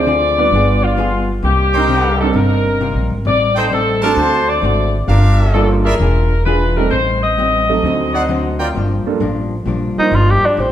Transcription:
Already playing: D2 D5
0.06 D3 C4 F4 G#4
0.38 G3 B3 D4 F4 B4
0.51 G1 G3 B3 F4
0.55 G#4
0.83 F4
0.97 G3 B3 F4 G#4
1.43 C2 C3 G3 A#3 D#4 G4
1.73 G3 C4 D4 D#4 A#4 C5 G5
1.89 C3 G3 A#3 D#4
2.20 G3 C4 D4 D#4 A4 A#4
2.30 G1 A4
2.34 C3 G3 A#3 D#4 A#4
2.81 C3 G3 A#3 D#4
2.94 A#1
3.10 G#1
3.25 A1 A2 G3 C4 D#4 D5
3.56 D#4 A4 C5 G5
3.71 A2 G3 C4 D#4 A4
4.02 A3 C4 D4 F#4 A4 A#4 C5 A5
4.13 D2 A#4
4.18 D3 A3 C4 F#4 C5
4.49 D5
4.62 G#1 D3 A3 C4 F#4
5.08 G1 G3 D4 F4 G4 A#4 F5
5.54 G3 A#3 D4 F4 A4 A#4
5.84 E4 G#4 A#4 D5 E5
5.99 E1 E3 D4 F4 G#4
6.46 E3 D4 F4 G#4 B4
6.77 G3 A3 C4 D#4 A4 A#4
6.90 A1 A2 G3 C4 D#4 C5
7.23 D#5
7.37 A2 G3 C4 D#4
7.69 F#3 A3 C4 D#4 A4
7.82 D2 D3 F#3 C4
7.87 D#4
8.13 D#4 C5 D5 F#5
8.29 D3 F#3 C4 D#4
8.59 F4 A#4 D5 G5
8.74 G1 G2 F3 A#3 D4
9.05 G3 A#3 D4 F4 A4, muted upright bass stroke
9.20 A1 G2 F3 A#3 D4
9.66 A#1 G2 F3 A#3 D4
9.98 G3 A#3 D4 D#4 F4 C5, muted upright bass stroke
10.11 G1 G2 F3 A#3 D4 F4
10.30 G4
10.42 D4, muted upright bass stroke
10.57 A1 F3 A3 C4 D#4 G4

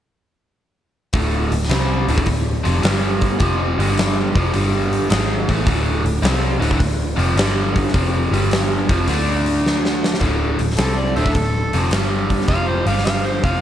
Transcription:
1.13 D1 D2 A2 D3, kick, open hi-hat
1.52 D1 D2 A2, open hi-hat
1.63 snare
1.69 C2 C3 G3 C4, snare, open hi-hat
2.08 D1 D2 A2 D3, open hi-hat
2.18 kick
2.26 D1 D2 A2, kick, open hi-hat
2.64 F1 F2 C3 F3, open hi-hat
2.82 G1 G2 D3 G3, snare, open hi-hat
3.21 kick, open hi-hat
3.39 F1 F2 C3 F3, kick, open hi-hat
3.78 G1 G2 D3 G3, open hi-hat
3.98 snare, open hi-hat
4.35 F1 F2 C3 F3, kick, open hi-hat
4.54 G1 G2 D3 G3, open hi-hat
4.93 open hi-hat
5.10 G#1 G#2 D#3 G#3, snare, open hi-hat
5.48 A1 A2 E3 A3, kick, open hi-hat
5.66 D1 D2 A2 D3, kick, open hi-hat
6.04 D1 D2 A2, open hi-hat
6.22 C2 C3 G3 C4, snare, open hi-hat
6.59 D1 D2 A2 D3, open hi-hat
6.71 kick
6.79 D1 D2 A2, kick, open hi-hat
7.16 F1 F2 C3 F3, open hi-hat
7.36 G1 G2 D3 G3, snare, open hi-hat
7.76 kick, open hi-hat
7.88 snare
7.93 F1 F2 C3 F3, kick, open hi-hat
8.32 G1 G2 D3 G3, open hi-hat
8.51 snare, open hi-hat
8.89 F1 F2 C3 F3, kick, open hi-hat
9.08 D2 D3 A3 D4, open hi-hat
9.46 open hi-hat
9.66 snare
9.85 snare
10.04 snare
10.14 snare
10.20 D1 D2 A2 D3, kick, open hi-hat
10.59 D1 D2 A2, open hi-hat
10.71 snare
10.77 C2 C3 G3 C4 A4, snare, open hi-hat
10.99 D5
11.16 D1 D2 A2 D3 A4 C5 E5, open hi-hat
11.26 kick
11.35 D1 D2 A2 A4, kick, open hi-hat
11.73 F1 F2 C3 F3, open hi-hat
11.91 G1 G2 D3 G3, snare, open hi-hat
12.30 kick, open hi-hat
12.41 snare
12.48 F1 F2 C3 F3 F5, kick, open hi-hat
12.68 C5
12.86 G1 G2 D3 G3 F5, open hi-hat
12.98 snare
13.05 F5, snare, open hi-hat
13.25 C5
13.44 F1 F2 C3 F3 F5, kick, open hi-hat

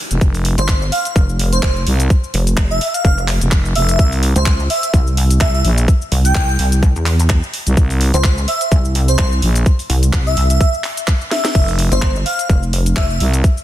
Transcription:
Already playing: downlifter
0.11 F1, closed hi-hat, cabasa
0.21 F1, kick, closed hi-hat, cabasa
0.34 open hi-hat, cabasa
0.45 open hi-hat
0.58 G1 C5, closed hi-hat, cabasa
0.68 kick, clap, closed hi-hat, cabasa
0.82 cabasa
0.92 F5, open hi-hat
1.05 closed hi-hat, cabasa
1.16 F1, kick, closed hi-hat, cabasa
1.29 cabasa
1.39 open hi-hat
1.52 C5, closed hi-hat, cabasa
1.63 F1 C5, kick, clap, closed hi-hat, cabasa
1.76 cabasa
1.87 C2, open hi-hat
2.00 closed hi-hat, cabasa
2.10 kick, closed hi-hat, cabasa
2.24 cabasa
2.34 F1, open hi-hat
2.47 closed hi-hat, cabasa
2.57 F1, kick, clap, cabasa
2.71 E5, cabasa
2.81 open hi-hat
2.94 F5, closed hi-hat, cabasa
3.05 F1 F5, kick, closed hi-hat, cabasa
3.18 cabasa
3.28 clap, open hi-hat
3.41 F1, closed hi-hat, cabasa
3.52 kick, clap, closed hi-hat, cabasa
3.65 cabasa
3.75 F1 E5, open hi-hat
3.89 closed hi-hat, cabasa
3.99 C2, kick, closed hi-hat, cabasa
4.12 open hi-hat, cabasa
4.23 open hi-hat
4.36 C#2 C5, closed hi-hat, cabasa
4.46 kick, clap, closed hi-hat, cabasa
4.60 cabasa
4.70 E5, open hi-hat
4.83 closed hi-hat, cabasa
4.94 C2, kick, closed hi-hat, cabasa
5.07 cabasa
5.17 open hi-hat
5.30 closed hi-hat, cabasa
5.41 C2 E5, kick, clap, closed hi-hat, cabasa
5.54 E5, cabasa
5.64 A#1, open hi-hat
5.78 closed hi-hat, cabasa
5.88 kick, closed hi-hat, cabasa
6.02 cabasa
6.12 C2, open hi-hat
6.25 G5, closed hi-hat, cabasa
6.35 C2, kick, clap, closed hi-hat, cabasa
6.49 cabasa
6.59 C2, open hi-hat
6.72 closed hi-hat, cabasa
6.83 kick, closed hi-hat, cabasa
6.96 E2, cabasa
7.06 clap, open hi-hat
7.19 closed hi-hat, cabasa
7.30 kick, clap, closed hi-hat, cabasa
7.43 cabasa
7.54 open hi-hat
7.67 C2, closed hi-hat, cabasa
7.77 C2, kick, closed hi-hat, cabasa
7.90 open hi-hat, cabasa
8.01 open hi-hat
8.14 C#2 C5, closed hi-hat, cabasa
8.24 kick, clap, cabasa
8.38 cabasa
8.48 E5, open hi-hat
8.61 closed hi-hat, cabasa
8.72 C2, kick, closed hi-hat, cabasa
8.85 cabasa
8.95 open hi-hat
9.08 C5, closed hi-hat, cabasa
9.19 C2 C5, kick, clap, closed hi-hat, cabasa
9.32 cabasa
9.42 A#1, open hi-hat
9.56 closed hi-hat, cabasa
9.66 kick, closed hi-hat, cabasa
9.79 open hi-hat, cabasa
9.90 C2, open hi-hat
10.03 closed hi-hat, cabasa
10.13 C2, kick, clap, closed hi-hat, cabasa
10.27 E5, cabasa
10.37 C2, open hi-hat
10.50 E5, closed hi-hat, cabasa
10.61 E5, kick, closed hi-hat, cabasa
10.74 cabasa
10.84 clap, open hi-hat
10.97 closed hi-hat, cabasa
11.07 kick, clap, cabasa
11.21 cabasa
11.31 E5, snare, open hi-hat
11.45 snare, closed hi-hat, cabasa
11.55 F1, kick, closed hi-hat, crash, cabasa
11.68 open hi-hat, cabasa
11.79 open hi-hat
11.92 G1 C5, closed hi-hat, cabasa
12.02 kick, clap, closed hi-hat, cabasa
12.16 cabasa
12.26 F5, open hi-hat
12.39 closed hi-hat, cabasa
12.49 F1, kick, closed hi-hat, cabasa
12.63 cabasa
12.73 open hi-hat
12.86 closed hi-hat, cabasa
12.96 F1 E5, kick, clap, closed hi-hat, cabasa
13.10 E5, cabasa
13.20 C2, open hi-hat
13.34 closed hi-hat, cabasa
13.44 kick, closed hi-hat, cabasa
13.57 cabasa

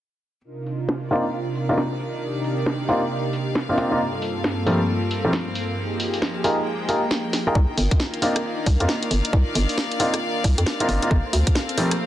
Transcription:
0.44 C3 D4 D#4 F4 A#4
0.64 D#3, open hi-hat
0.81 A#3
0.89 snare
1.06 D5
1.11 A#3 C4 D4 D#4 F4, open hi-hat
1.23 F5
1.55 open hi-hat
1.69 A#3 C4 D4 D#4 F4
1.78 snare
2.00 open hi-hat
2.22 G4
2.44 open hi-hat
2.58 open hi-hat
2.66 snare
2.89 A#3 C4 D4 D#4 F4, open hi-hat
3.33 open hi-hat
3.55 snare
3.69 A#3 C4 D4 D#4 F4
3.77 A#3 C4 D4 D#4 F4, snare, open hi-hat
3.91 A#3 C4 D4 D#4 F4
4.00 G2 G3 A#3 C4 F4 A4
4.22 open hi-hat
4.44 snare
4.51 C4
4.66 F3 G3 A3 A#3 C4, open hi-hat
5.11 open hi-hat
5.25 F3 G3 A3 A#3 C4
5.33 snare
5.55 open hi-hat
5.78 F3 D#4 G4 G#4
5.97 D#3, open hi-hat
6.14 open hi-hat
6.22 snare
6.44 D#4 F4 G4 G#4 A#4, open hi-hat
6.49 G#3
6.60 G5
6.89 D#4 F4 G4 G#4 A#4, open hi-hat
7.11 snare
7.33 snare, open hi-hat
7.47 D#4 F4 G4 G#4 A#4
7.55 C2 D4 F4 A#4, kick
7.78 G1, open hi-hat
7.91 kick, closed hi-hat
8.00 snare
8.10 F5, closed hi-hat
8.22 A#3 C4 D4 D#4 F4, open hi-hat
8.34 D5, cross-stick, closed hi-hat
8.66 C2, kick, cross-stick, open hi-hat
8.80 F2 A#3 C4 D4 D#4 F4, closed hi-hat
8.89 snare
9.03 closed hi-hat
9.11 G1, open hi-hat
9.25 closed hi-hat
9.33 C2, kick
9.55 G1, open hi-hat
9.69 open hi-hat
9.78 snare
9.91 closed hi-hat
10.00 A#3 C4 D4 D#4 F4, open hi-hat
10.14 cross-stick, closed hi-hat
10.44 C2, kick, cross-stick, open hi-hat
10.58 F2, closed hi-hat
10.66 snare
10.80 A#3 C4 D4 D#4 F4, closed hi-hat
10.89 G1 A#3 C4 D4 D#4 F4, snare, open hi-hat
11.02 A#3 C4 D4 D#4 F4, closed hi-hat
11.11 G1 A#3 C4 A4, kick
11.33 D2, open hi-hat
11.47 kick, closed hi-hat
11.55 snare
11.69 closed hi-hat
11.77 F3 G3 A3 A#3 C4, open hi-hat
11.91 cross-stick, closed hi-hat

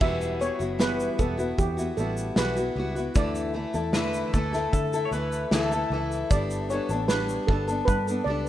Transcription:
0.00 E1 E3 G3 B3 E4 F#4 E5, kick, crash
0.21 shaker
0.40 G3 B3 E4 F#4 C#5, shaker
0.59 F#1 B3 E4 F#4, shaker
0.79 E3 G3 B3 E4 F#4 B4, snare, shaker
1.00 shaker
1.18 E1 G3 B3 E4 F#4 A4, kick, shaker
1.37 B3 E4 F#4, shaker
1.58 E2 G4, kick, shaker
1.77 B3 E4 F#4, shaker
1.97 A1 G3 B3 E4 F#4 A4, shaker
2.17 shaker
2.36 B1 E3 G3 B3 E4 F#4 B4, snare, shaker
2.56 B3 E4 F#4, shaker
2.76 C#2 G3 B3 E4 F#4
2.95 B3 E4 F#4, shaker
3.15 D2 D3 E3 A3 E4 A4 D5, kick, shaker
3.35 shaker
3.54 E3 A3 E4 A4
3.74 E2 A3 E4 A4, shaker
3.93 D3 E3 A3 E4 A4 B4, snare, shaker
4.14 shaker
4.33 D2 E3 A3 E4 A4, kick, shaker
4.53 A3 E4 A4, snare, shaker
4.73 D3 A4, kick, shaker
4.93 A3 E4 A4, shaker
5.05 C#5
5.11 D2 E3 A3 E4 B4, shaker
5.16 A4
5.32 shaker
5.51 D2 D3 E3 A3 E4 A4, snare, shaker
5.72 A3 E4 A4, shaker
5.90 C#2 E3 A3 E4
5.95 A4
6.12 shaker
6.31 G1 G3 B3 D4 A4 D5, kick, shaker
6.50 shaker
6.70 G3 B3 D4 A4 C#5, shaker
6.89 A1 D4 A4, shaker
6.93 B3
7.08 G3 B3 D4 B4, snare, shaker
7.12 A4
7.29 shaker
7.47 G1 G3 B3 D4 A4, kick
7.52 A4
7.67 B3 D4 A4, shaker
7.85 G2 B4, kick, shaker
8.07 B3 D4 A4, shaker
8.24 C#2 G3 B3 D5
8.29 D4 A4

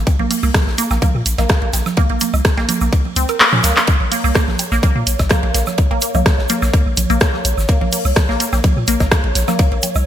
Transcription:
0.07 kick, ride, cowbell, shaker
0.19 A#1 A#3, high conga
0.31 A#3, closed hi-hat, open hi-hat, shaker
0.43 C2 A#3, high woodblock, shaker
0.54 kick, cross-stick, snare, ride, high conga, shaker
0.67 A#1, snare
0.78 A#3, closed hi-hat, ride, shaker
0.90 A#1 A#3, snare, cowbell, high woodblock, shaker
1.02 A#3, kick, ride, high conga, shaker
1.15 A#2
1.26 A#1, closed hi-hat, ride, shaker
1.38 A#1 A#3, snare, closed hi-hat, cowbell, high conga, high woodblock, shaker
1.49 A#3, kick, cross-stick, snare, ride, shaker
1.62 A#1 A#3, ride
1.73 A#1, snare, closed hi-hat, ride, cowbell, shaker
1.86 snare, high conga, high woodblock, shaker
1.97 A#3, kick, ride, shaker
2.09 A#1 A#3, ride
2.20 A#3, closed hi-hat, ride, high conga, shaker
2.34 C2, cowbell, high woodblock, shaker
2.45 kick, cross-stick, snare, ride, shaker
2.57 A#1 A#3, snare, closed hi-hat, cowbell
2.69 A#3, closed hi-hat, ride, high conga, shaker
2.81 A#1 A#3, high woodblock, shaker
2.92 kick, ride, shaker
3.05 high conga
3.16 C#2 C4, closed hi-hat, ride, shaker
3.28 A#4, closed hi-hat, high woodblock, shaker
3.40 A#3, clap, open hi-hat, cowbell, shaker
3.53 A#2 C#4, high conga
3.63 C#2 A#3, snare, closed hi-hat, ride, shaker
3.77 A#3, snare, clap, high woodblock, shaker
3.87 C#5, kick, ride, shaker
4.00 A#1, high conga
4.11 A#3, closed hi-hat, open hi-hat, shaker
4.24 C2 A#3, high woodblock, shaker
4.35 A#3, kick, cross-stick, snare, ride, shaker
4.48 A#1, snare, high conga
4.59 closed hi-hat, ride, cowbell, shaker
4.72 A#1 A#3, snare, high woodblock, shaker
4.83 A#3, kick, ride, high conga, shaker
4.96 A#2 A#3
5.07 A#1, closed hi-hat, ride, shaker
5.19 A#1, kick, snare, closed hi-hat, cowbell, high woodblock, shaker
5.29 A#3, kick, cross-stick, snare, ride, high conga, shaker
5.43 A#1 A#3, ride
5.54 A#1 A#3, snare, closed hi-hat, ride, shaker
5.66 snare, high conga, high woodblock, shaker
5.78 kick, ride, shaker
5.91 A#1 A#3, ride, cowbell
6.01 A#3, closed hi-hat, ride, shaker
6.14 C2 A#3, cowbell, high conga, high woodblock, shaker
6.26 kick, cross-stick, snare, ride, shaker
6.38 A#1, snare
6.49 A#3, closed hi-hat, ride, high conga, shaker
6.62 A#1 A#3, snare, high woodblock, shaker
6.73 A#3, kick, ride, shaker
6.86 A#1
6.97 A#1, closed hi-hat, ride, high conga, shaker
7.10 A#1 A#3, closed hi-hat, high woodblock, shaker
7.21 A#3, kick, cross-stick, snare, ride, cowbell, shaker
7.34 A#3, snare, high conga
7.45 A#1, closed hi-hat, ride, shaker
7.57 G#1, snare, high woodblock, shaker
7.68 A#3, kick, ride, shaker
7.81 A#1 A#3, high conga
7.92 A#3, closed hi-hat, open hi-hat, shaker
8.05 C2, high woodblock, shaker
8.16 kick, cross-stick, snare, ride, high conga, shaker
8.29 A#1 A#3, snare
8.40 A#3, closed hi-hat, ride, shaker
8.52 A#1 A#3, snare, cowbell, high woodblock, shaker
8.64 kick, ride, high conga, shaker
8.77 A#2
8.88 A#1 A#3, closed hi-hat, ride, shaker
9.00 A#1 A#3, kick, snare, closed hi-hat, cowbell, high conga, high woodblock, shaker
9.11 A#3, kick, cross-stick, snare, ride, shaker
9.24 A#1, ride
9.35 A#1, snare, closed hi-hat, ride, shaker
9.47 A#3, snare, high conga, high woodblock, shaker
9.59 A#3, kick, ride, shaker
9.72 A#1 A#3, ride
9.82 closed hi-hat, ride, cowbell, high conga, shaker
9.95 C2, cowbell, high woodblock, shaker

